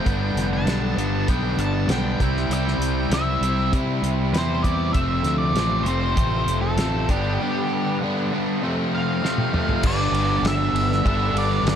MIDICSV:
0, 0, Header, 1, 5, 480
1, 0, Start_track
1, 0, Tempo, 610376
1, 49, Time_signature, 4, 2, 24, 8
1, 9244, End_track
2, 0, Start_track
2, 0, Title_t, "Lead electric guitar"
2, 0, Program_c, 0, 29
2, 0, Note_on_c, 0, 79, 83
2, 372, Note_off_c, 0, 79, 0
2, 418, Note_on_c, 0, 81, 98
2, 1012, Note_off_c, 0, 81, 0
2, 1015, Note_on_c, 0, 79, 95
2, 1237, Note_off_c, 0, 79, 0
2, 1263, Note_on_c, 0, 81, 91
2, 1501, Note_off_c, 0, 81, 0
2, 1504, Note_on_c, 0, 79, 83
2, 1985, Note_off_c, 0, 79, 0
2, 1995, Note_on_c, 0, 79, 92
2, 2433, Note_off_c, 0, 79, 0
2, 2467, Note_on_c, 0, 76, 61
2, 2909, Note_off_c, 0, 76, 0
2, 3412, Note_on_c, 0, 72, 86
2, 3638, Note_on_c, 0, 74, 84
2, 3660, Note_off_c, 0, 72, 0
2, 3874, Note_off_c, 0, 74, 0
2, 3877, Note_on_c, 0, 76, 100
2, 4227, Note_off_c, 0, 76, 0
2, 4231, Note_on_c, 0, 74, 89
2, 4585, Note_on_c, 0, 72, 92
2, 4614, Note_off_c, 0, 74, 0
2, 5169, Note_off_c, 0, 72, 0
2, 5200, Note_on_c, 0, 69, 83
2, 5579, Note_off_c, 0, 69, 0
2, 5581, Note_on_c, 0, 67, 68
2, 6267, Note_off_c, 0, 67, 0
2, 7035, Note_on_c, 0, 77, 80
2, 7757, Note_off_c, 0, 77, 0
2, 7760, Note_on_c, 0, 74, 87
2, 8235, Note_off_c, 0, 74, 0
2, 8238, Note_on_c, 0, 76, 79
2, 8697, Note_off_c, 0, 76, 0
2, 8707, Note_on_c, 0, 76, 95
2, 8946, Note_off_c, 0, 76, 0
2, 8951, Note_on_c, 0, 74, 84
2, 9181, Note_off_c, 0, 74, 0
2, 9190, Note_on_c, 0, 74, 85
2, 9244, Note_off_c, 0, 74, 0
2, 9244, End_track
3, 0, Start_track
3, 0, Title_t, "Overdriven electric guitar"
3, 0, Program_c, 1, 29
3, 39, Note_on_c, 1, 43, 81
3, 42, Note_on_c, 1, 50, 94
3, 46, Note_on_c, 1, 55, 92
3, 51, Note_on_c, 1, 59, 83
3, 54, Note_on_c, 1, 62, 97
3, 506, Note_off_c, 1, 43, 0
3, 514, Note_off_c, 1, 50, 0
3, 515, Note_on_c, 1, 43, 68
3, 523, Note_on_c, 1, 50, 80
3, 525, Note_off_c, 1, 59, 0
3, 525, Note_off_c, 1, 62, 0
3, 528, Note_off_c, 1, 55, 0
3, 531, Note_on_c, 1, 55, 73
3, 534, Note_on_c, 1, 59, 83
3, 535, Note_on_c, 1, 62, 80
3, 758, Note_off_c, 1, 43, 0
3, 764, Note_off_c, 1, 50, 0
3, 768, Note_on_c, 1, 43, 75
3, 771, Note_off_c, 1, 59, 0
3, 772, Note_off_c, 1, 55, 0
3, 773, Note_on_c, 1, 50, 71
3, 775, Note_off_c, 1, 62, 0
3, 776, Note_on_c, 1, 55, 70
3, 780, Note_on_c, 1, 59, 80
3, 784, Note_on_c, 1, 62, 81
3, 1000, Note_off_c, 1, 43, 0
3, 1007, Note_off_c, 1, 50, 0
3, 1009, Note_on_c, 1, 43, 82
3, 1013, Note_off_c, 1, 59, 0
3, 1016, Note_on_c, 1, 50, 89
3, 1017, Note_off_c, 1, 55, 0
3, 1017, Note_off_c, 1, 62, 0
3, 1020, Note_on_c, 1, 55, 99
3, 1023, Note_on_c, 1, 59, 96
3, 1026, Note_on_c, 1, 62, 99
3, 1487, Note_off_c, 1, 43, 0
3, 1491, Note_off_c, 1, 50, 0
3, 1496, Note_on_c, 1, 43, 73
3, 1499, Note_off_c, 1, 59, 0
3, 1500, Note_on_c, 1, 50, 78
3, 1501, Note_off_c, 1, 55, 0
3, 1504, Note_on_c, 1, 55, 76
3, 1505, Note_off_c, 1, 62, 0
3, 1508, Note_on_c, 1, 59, 86
3, 1514, Note_on_c, 1, 62, 78
3, 1720, Note_off_c, 1, 43, 0
3, 1722, Note_off_c, 1, 50, 0
3, 1726, Note_off_c, 1, 59, 0
3, 1729, Note_off_c, 1, 62, 0
3, 1737, Note_off_c, 1, 55, 0
3, 1739, Note_on_c, 1, 48, 80
3, 1741, Note_on_c, 1, 55, 82
3, 1746, Note_on_c, 1, 60, 82
3, 1748, Note_on_c, 1, 64, 101
3, 1968, Note_off_c, 1, 48, 0
3, 1978, Note_on_c, 1, 48, 83
3, 1982, Note_off_c, 1, 55, 0
3, 1982, Note_off_c, 1, 64, 0
3, 1984, Note_off_c, 1, 60, 0
3, 1985, Note_on_c, 1, 55, 87
3, 1987, Note_on_c, 1, 60, 88
3, 1992, Note_on_c, 1, 64, 102
3, 2452, Note_off_c, 1, 48, 0
3, 2461, Note_off_c, 1, 55, 0
3, 2462, Note_on_c, 1, 48, 75
3, 2464, Note_off_c, 1, 64, 0
3, 2465, Note_on_c, 1, 55, 78
3, 2471, Note_off_c, 1, 60, 0
3, 2473, Note_on_c, 1, 64, 85
3, 2474, Note_on_c, 1, 60, 78
3, 2689, Note_off_c, 1, 48, 0
3, 2698, Note_on_c, 1, 48, 76
3, 2702, Note_off_c, 1, 55, 0
3, 2705, Note_off_c, 1, 60, 0
3, 2705, Note_off_c, 1, 64, 0
3, 2705, Note_on_c, 1, 55, 78
3, 2714, Note_on_c, 1, 60, 80
3, 2714, Note_on_c, 1, 64, 79
3, 2926, Note_off_c, 1, 48, 0
3, 2936, Note_on_c, 1, 48, 89
3, 2939, Note_off_c, 1, 60, 0
3, 2942, Note_off_c, 1, 55, 0
3, 2942, Note_off_c, 1, 64, 0
3, 2945, Note_on_c, 1, 55, 93
3, 2949, Note_on_c, 1, 60, 99
3, 2951, Note_on_c, 1, 64, 103
3, 3410, Note_off_c, 1, 48, 0
3, 3419, Note_on_c, 1, 48, 76
3, 3420, Note_off_c, 1, 55, 0
3, 3420, Note_off_c, 1, 60, 0
3, 3422, Note_off_c, 1, 64, 0
3, 3423, Note_on_c, 1, 55, 79
3, 3429, Note_on_c, 1, 60, 80
3, 3431, Note_on_c, 1, 64, 79
3, 3646, Note_off_c, 1, 48, 0
3, 3652, Note_off_c, 1, 60, 0
3, 3656, Note_on_c, 1, 48, 68
3, 3657, Note_off_c, 1, 55, 0
3, 3658, Note_off_c, 1, 64, 0
3, 3660, Note_on_c, 1, 55, 76
3, 3662, Note_on_c, 1, 60, 78
3, 3668, Note_on_c, 1, 64, 89
3, 3881, Note_off_c, 1, 48, 0
3, 3884, Note_off_c, 1, 60, 0
3, 3887, Note_off_c, 1, 64, 0
3, 3889, Note_on_c, 1, 41, 84
3, 3894, Note_on_c, 1, 48, 98
3, 3899, Note_off_c, 1, 55, 0
3, 3902, Note_on_c, 1, 53, 92
3, 3905, Note_on_c, 1, 57, 97
3, 3909, Note_on_c, 1, 60, 89
3, 4364, Note_off_c, 1, 41, 0
3, 4370, Note_off_c, 1, 48, 0
3, 4374, Note_on_c, 1, 41, 73
3, 4377, Note_off_c, 1, 53, 0
3, 4380, Note_off_c, 1, 57, 0
3, 4380, Note_on_c, 1, 48, 74
3, 4383, Note_off_c, 1, 60, 0
3, 4386, Note_on_c, 1, 53, 84
3, 4389, Note_on_c, 1, 57, 87
3, 4393, Note_on_c, 1, 60, 81
3, 4602, Note_off_c, 1, 41, 0
3, 4602, Note_off_c, 1, 48, 0
3, 4608, Note_off_c, 1, 53, 0
3, 4611, Note_on_c, 1, 41, 66
3, 4612, Note_on_c, 1, 48, 72
3, 4616, Note_off_c, 1, 57, 0
3, 4617, Note_on_c, 1, 53, 72
3, 4621, Note_off_c, 1, 60, 0
3, 4625, Note_on_c, 1, 57, 75
3, 4630, Note_on_c, 1, 60, 79
3, 4838, Note_off_c, 1, 41, 0
3, 4845, Note_off_c, 1, 48, 0
3, 4847, Note_on_c, 1, 41, 82
3, 4849, Note_off_c, 1, 53, 0
3, 4854, Note_off_c, 1, 57, 0
3, 4854, Note_on_c, 1, 48, 96
3, 4855, Note_off_c, 1, 60, 0
3, 4858, Note_on_c, 1, 53, 98
3, 4863, Note_on_c, 1, 57, 89
3, 4865, Note_on_c, 1, 60, 94
3, 5325, Note_off_c, 1, 41, 0
3, 5334, Note_off_c, 1, 48, 0
3, 5335, Note_on_c, 1, 41, 76
3, 5337, Note_off_c, 1, 53, 0
3, 5343, Note_off_c, 1, 57, 0
3, 5344, Note_off_c, 1, 60, 0
3, 5344, Note_on_c, 1, 48, 72
3, 5346, Note_on_c, 1, 53, 70
3, 5352, Note_on_c, 1, 57, 74
3, 5354, Note_on_c, 1, 60, 79
3, 5561, Note_off_c, 1, 41, 0
3, 5565, Note_off_c, 1, 48, 0
3, 5567, Note_off_c, 1, 53, 0
3, 5570, Note_off_c, 1, 57, 0
3, 5571, Note_off_c, 1, 60, 0
3, 5585, Note_on_c, 1, 43, 75
3, 5585, Note_on_c, 1, 50, 85
3, 5591, Note_on_c, 1, 55, 87
3, 5597, Note_on_c, 1, 62, 97
3, 5599, Note_on_c, 1, 59, 90
3, 5814, Note_off_c, 1, 43, 0
3, 5820, Note_off_c, 1, 50, 0
3, 5821, Note_off_c, 1, 55, 0
3, 5823, Note_on_c, 1, 43, 91
3, 5828, Note_off_c, 1, 59, 0
3, 5830, Note_on_c, 1, 50, 99
3, 5830, Note_on_c, 1, 55, 97
3, 5834, Note_off_c, 1, 62, 0
3, 5838, Note_on_c, 1, 59, 97
3, 5843, Note_on_c, 1, 62, 104
3, 6293, Note_off_c, 1, 43, 0
3, 6302, Note_on_c, 1, 43, 67
3, 6305, Note_off_c, 1, 50, 0
3, 6305, Note_off_c, 1, 55, 0
3, 6311, Note_off_c, 1, 59, 0
3, 6314, Note_on_c, 1, 50, 70
3, 6315, Note_on_c, 1, 55, 74
3, 6318, Note_off_c, 1, 62, 0
3, 6320, Note_on_c, 1, 59, 80
3, 6327, Note_on_c, 1, 62, 80
3, 6538, Note_off_c, 1, 43, 0
3, 6543, Note_off_c, 1, 50, 0
3, 6546, Note_off_c, 1, 55, 0
3, 6548, Note_on_c, 1, 43, 71
3, 6550, Note_off_c, 1, 59, 0
3, 6552, Note_on_c, 1, 50, 73
3, 6554, Note_off_c, 1, 62, 0
3, 6556, Note_on_c, 1, 55, 83
3, 6559, Note_on_c, 1, 59, 84
3, 6563, Note_on_c, 1, 62, 80
3, 6767, Note_off_c, 1, 43, 0
3, 6769, Note_off_c, 1, 50, 0
3, 6771, Note_off_c, 1, 55, 0
3, 6773, Note_off_c, 1, 59, 0
3, 6775, Note_off_c, 1, 62, 0
3, 6782, Note_on_c, 1, 41, 85
3, 6789, Note_on_c, 1, 48, 92
3, 6790, Note_on_c, 1, 53, 86
3, 6795, Note_on_c, 1, 57, 93
3, 6801, Note_on_c, 1, 60, 99
3, 7248, Note_off_c, 1, 41, 0
3, 7255, Note_off_c, 1, 48, 0
3, 7257, Note_on_c, 1, 41, 75
3, 7258, Note_off_c, 1, 53, 0
3, 7260, Note_off_c, 1, 57, 0
3, 7264, Note_on_c, 1, 48, 79
3, 7267, Note_off_c, 1, 60, 0
3, 7268, Note_on_c, 1, 53, 79
3, 7269, Note_on_c, 1, 57, 80
3, 7277, Note_on_c, 1, 60, 72
3, 7491, Note_off_c, 1, 41, 0
3, 7493, Note_off_c, 1, 48, 0
3, 7499, Note_off_c, 1, 53, 0
3, 7500, Note_on_c, 1, 41, 68
3, 7502, Note_off_c, 1, 57, 0
3, 7502, Note_on_c, 1, 48, 74
3, 7508, Note_off_c, 1, 60, 0
3, 7508, Note_on_c, 1, 53, 74
3, 7512, Note_on_c, 1, 57, 83
3, 7517, Note_on_c, 1, 60, 80
3, 7723, Note_off_c, 1, 41, 0
3, 7724, Note_off_c, 1, 48, 0
3, 7727, Note_off_c, 1, 53, 0
3, 7728, Note_off_c, 1, 57, 0
3, 7731, Note_off_c, 1, 60, 0
3, 7734, Note_on_c, 1, 43, 87
3, 7743, Note_on_c, 1, 50, 91
3, 7752, Note_on_c, 1, 55, 87
3, 7755, Note_on_c, 1, 59, 97
3, 7763, Note_on_c, 1, 62, 101
3, 8673, Note_off_c, 1, 43, 0
3, 8682, Note_off_c, 1, 50, 0
3, 8682, Note_on_c, 1, 43, 80
3, 8686, Note_off_c, 1, 55, 0
3, 8688, Note_off_c, 1, 59, 0
3, 8691, Note_on_c, 1, 50, 76
3, 8692, Note_off_c, 1, 62, 0
3, 8700, Note_on_c, 1, 55, 88
3, 8705, Note_on_c, 1, 59, 78
3, 8713, Note_on_c, 1, 62, 94
3, 9244, Note_off_c, 1, 43, 0
3, 9244, Note_off_c, 1, 50, 0
3, 9244, Note_off_c, 1, 55, 0
3, 9244, Note_off_c, 1, 59, 0
3, 9244, Note_off_c, 1, 62, 0
3, 9244, End_track
4, 0, Start_track
4, 0, Title_t, "Fingered electric bass"
4, 0, Program_c, 2, 33
4, 47, Note_on_c, 2, 31, 78
4, 267, Note_off_c, 2, 31, 0
4, 271, Note_on_c, 2, 29, 78
4, 499, Note_off_c, 2, 29, 0
4, 515, Note_on_c, 2, 35, 82
4, 741, Note_off_c, 2, 35, 0
4, 753, Note_on_c, 2, 31, 77
4, 980, Note_off_c, 2, 31, 0
4, 1008, Note_on_c, 2, 35, 77
4, 1229, Note_off_c, 2, 35, 0
4, 1233, Note_on_c, 2, 31, 78
4, 1461, Note_off_c, 2, 31, 0
4, 1471, Note_on_c, 2, 35, 85
4, 1700, Note_off_c, 2, 35, 0
4, 1724, Note_on_c, 2, 36, 78
4, 1947, Note_off_c, 2, 36, 0
4, 1956, Note_on_c, 2, 36, 81
4, 2183, Note_off_c, 2, 36, 0
4, 2188, Note_on_c, 2, 36, 80
4, 2419, Note_off_c, 2, 36, 0
4, 2439, Note_on_c, 2, 36, 82
4, 2665, Note_off_c, 2, 36, 0
4, 2682, Note_on_c, 2, 36, 79
4, 2907, Note_off_c, 2, 36, 0
4, 2929, Note_on_c, 2, 48, 77
4, 3150, Note_off_c, 2, 48, 0
4, 3162, Note_on_c, 2, 36, 82
4, 3387, Note_off_c, 2, 36, 0
4, 3401, Note_on_c, 2, 40, 88
4, 3857, Note_off_c, 2, 40, 0
4, 3883, Note_on_c, 2, 29, 77
4, 4108, Note_off_c, 2, 29, 0
4, 4116, Note_on_c, 2, 38, 79
4, 4344, Note_off_c, 2, 38, 0
4, 4351, Note_on_c, 2, 33, 85
4, 4581, Note_off_c, 2, 33, 0
4, 4596, Note_on_c, 2, 29, 83
4, 4824, Note_off_c, 2, 29, 0
4, 4849, Note_on_c, 2, 33, 82
4, 5071, Note_off_c, 2, 33, 0
4, 5083, Note_on_c, 2, 29, 75
4, 5308, Note_off_c, 2, 29, 0
4, 5320, Note_on_c, 2, 33, 87
4, 5546, Note_off_c, 2, 33, 0
4, 5571, Note_on_c, 2, 31, 79
4, 5792, Note_off_c, 2, 31, 0
4, 7732, Note_on_c, 2, 31, 87
4, 7954, Note_off_c, 2, 31, 0
4, 7958, Note_on_c, 2, 31, 90
4, 8191, Note_off_c, 2, 31, 0
4, 8199, Note_on_c, 2, 31, 89
4, 8430, Note_off_c, 2, 31, 0
4, 8440, Note_on_c, 2, 31, 84
4, 8671, Note_off_c, 2, 31, 0
4, 8692, Note_on_c, 2, 31, 85
4, 8911, Note_off_c, 2, 31, 0
4, 8916, Note_on_c, 2, 31, 89
4, 9144, Note_off_c, 2, 31, 0
4, 9149, Note_on_c, 2, 31, 91
4, 9244, Note_off_c, 2, 31, 0
4, 9244, End_track
5, 0, Start_track
5, 0, Title_t, "Drums"
5, 50, Note_on_c, 9, 36, 97
5, 50, Note_on_c, 9, 42, 70
5, 128, Note_off_c, 9, 42, 0
5, 129, Note_off_c, 9, 36, 0
5, 294, Note_on_c, 9, 42, 52
5, 303, Note_on_c, 9, 38, 28
5, 373, Note_off_c, 9, 42, 0
5, 381, Note_off_c, 9, 38, 0
5, 527, Note_on_c, 9, 42, 70
5, 536, Note_on_c, 9, 38, 96
5, 606, Note_off_c, 9, 42, 0
5, 614, Note_off_c, 9, 38, 0
5, 775, Note_on_c, 9, 42, 53
5, 853, Note_off_c, 9, 42, 0
5, 1009, Note_on_c, 9, 42, 68
5, 1011, Note_on_c, 9, 36, 97
5, 1087, Note_off_c, 9, 42, 0
5, 1090, Note_off_c, 9, 36, 0
5, 1248, Note_on_c, 9, 42, 55
5, 1327, Note_off_c, 9, 42, 0
5, 1486, Note_on_c, 9, 42, 82
5, 1495, Note_on_c, 9, 38, 101
5, 1565, Note_off_c, 9, 42, 0
5, 1573, Note_off_c, 9, 38, 0
5, 1732, Note_on_c, 9, 36, 94
5, 1733, Note_on_c, 9, 42, 54
5, 1811, Note_off_c, 9, 36, 0
5, 1812, Note_off_c, 9, 42, 0
5, 1863, Note_on_c, 9, 38, 28
5, 1942, Note_off_c, 9, 38, 0
5, 1975, Note_on_c, 9, 42, 79
5, 2054, Note_off_c, 9, 42, 0
5, 2105, Note_on_c, 9, 38, 28
5, 2183, Note_off_c, 9, 38, 0
5, 2216, Note_on_c, 9, 42, 58
5, 2294, Note_off_c, 9, 42, 0
5, 2450, Note_on_c, 9, 42, 80
5, 2459, Note_on_c, 9, 38, 102
5, 2529, Note_off_c, 9, 42, 0
5, 2537, Note_off_c, 9, 38, 0
5, 2696, Note_on_c, 9, 42, 58
5, 2774, Note_off_c, 9, 42, 0
5, 2933, Note_on_c, 9, 36, 97
5, 2936, Note_on_c, 9, 42, 76
5, 3012, Note_off_c, 9, 36, 0
5, 3015, Note_off_c, 9, 42, 0
5, 3175, Note_on_c, 9, 42, 55
5, 3254, Note_off_c, 9, 42, 0
5, 3417, Note_on_c, 9, 42, 81
5, 3426, Note_on_c, 9, 38, 98
5, 3496, Note_off_c, 9, 42, 0
5, 3504, Note_off_c, 9, 38, 0
5, 3651, Note_on_c, 9, 36, 79
5, 3653, Note_on_c, 9, 42, 54
5, 3730, Note_off_c, 9, 36, 0
5, 3732, Note_off_c, 9, 42, 0
5, 3888, Note_on_c, 9, 42, 70
5, 3890, Note_on_c, 9, 36, 101
5, 3967, Note_off_c, 9, 42, 0
5, 3969, Note_off_c, 9, 36, 0
5, 4124, Note_on_c, 9, 42, 56
5, 4133, Note_on_c, 9, 38, 28
5, 4203, Note_off_c, 9, 42, 0
5, 4211, Note_off_c, 9, 38, 0
5, 4369, Note_on_c, 9, 42, 72
5, 4378, Note_on_c, 9, 38, 99
5, 4448, Note_off_c, 9, 42, 0
5, 4457, Note_off_c, 9, 38, 0
5, 4609, Note_on_c, 9, 42, 54
5, 4688, Note_off_c, 9, 42, 0
5, 4852, Note_on_c, 9, 42, 72
5, 4854, Note_on_c, 9, 36, 99
5, 4931, Note_off_c, 9, 42, 0
5, 4932, Note_off_c, 9, 36, 0
5, 5095, Note_on_c, 9, 42, 52
5, 5174, Note_off_c, 9, 42, 0
5, 5329, Note_on_c, 9, 42, 80
5, 5338, Note_on_c, 9, 38, 104
5, 5408, Note_off_c, 9, 42, 0
5, 5416, Note_off_c, 9, 38, 0
5, 5574, Note_on_c, 9, 42, 56
5, 5575, Note_on_c, 9, 36, 94
5, 5653, Note_off_c, 9, 42, 0
5, 5654, Note_off_c, 9, 36, 0
5, 7273, Note_on_c, 9, 38, 55
5, 7351, Note_off_c, 9, 38, 0
5, 7377, Note_on_c, 9, 48, 56
5, 7456, Note_off_c, 9, 48, 0
5, 7503, Note_on_c, 9, 45, 73
5, 7581, Note_off_c, 9, 45, 0
5, 7620, Note_on_c, 9, 43, 73
5, 7699, Note_off_c, 9, 43, 0
5, 7732, Note_on_c, 9, 49, 119
5, 7737, Note_on_c, 9, 36, 116
5, 7811, Note_off_c, 9, 49, 0
5, 7815, Note_off_c, 9, 36, 0
5, 7978, Note_on_c, 9, 51, 67
5, 8057, Note_off_c, 9, 51, 0
5, 8216, Note_on_c, 9, 51, 93
5, 8224, Note_on_c, 9, 38, 110
5, 8294, Note_off_c, 9, 51, 0
5, 8303, Note_off_c, 9, 38, 0
5, 8460, Note_on_c, 9, 51, 71
5, 8539, Note_off_c, 9, 51, 0
5, 8588, Note_on_c, 9, 38, 32
5, 8667, Note_off_c, 9, 38, 0
5, 8696, Note_on_c, 9, 36, 106
5, 8700, Note_on_c, 9, 51, 89
5, 8774, Note_off_c, 9, 36, 0
5, 8779, Note_off_c, 9, 51, 0
5, 8939, Note_on_c, 9, 51, 71
5, 9017, Note_off_c, 9, 51, 0
5, 9174, Note_on_c, 9, 51, 100
5, 9183, Note_on_c, 9, 38, 113
5, 9244, Note_off_c, 9, 38, 0
5, 9244, Note_off_c, 9, 51, 0
5, 9244, End_track
0, 0, End_of_file